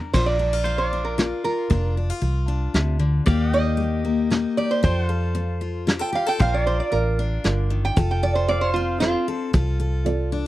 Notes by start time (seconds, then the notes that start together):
Already playing: D4 F4 A#4
0.14 A#1 A#2 D4 F4 A#4 C5, kick, crash
0.26 D5
0.39 D4
0.53 F4
0.64 F3 C5 F5, closed hi-hat
0.78 C5
0.89 D4 D5
1.05 A#4
1.18 A#2 F4, snare, closed hi-hat
1.44 F4 A#4
1.70 F1 A#2 D4 F4, kick, closed hi-hat
1.97 D4
2.10 F4
2.22 C2 F3, closed hi-hat
2.48 D4
2.74 D2 C3, snare, closed hi-hat
2.99 D3
3.26 D#2 D#3 A#3 D#4 G4 D5 F5, kick, closed hi-hat
3.46 D#5
3.53 D#4 D#5 G5
3.77 G3, closed hi-hat
4.05 A#3
4.30 A#2 D#4, snare, closed hi-hat
4.57 G4 D5
4.71 C5
4.83 F2 F3 F4 A4 C5 G5, kick, closed hi-hat
5.09 A4 F5
5.35 C4, closed hi-hat
5.61 F4
5.87 C3 G4, snare, closed hi-hat
5.99 A4 G5
6.12 G4 F5
6.26 A4 G5
6.39 A#1 A#2 D4 F4 A#4 C5 F5, kick, closed hi-hat
6.54 D5
6.65 F4 C5 D5
6.80 D5
6.92 A1 F3 F4 A#4 D5, closed hi-hat
7.19 D4
7.44 G1 D3 F4 A#4 D5, snare, closed hi-hat
7.70 D#3
7.85 G5
7.96 F1 F3 F4 A4, kick, closed hi-hat
8.11 G5
8.23 A4 D5
8.35 C5
8.48 C4 F4 A4 C5 D5 F5, closed hi-hat
8.61 C5
8.74 C4 F4 C5
9.00 C3 C4 F4 A4 C5, snare, closed hi-hat
9.28 A4
9.53 C2 F3 F4 A4, kick, closed hi-hat
9.80 A4
10.05 C4 F4 A4 D5, closed hi-hat
10.32 D4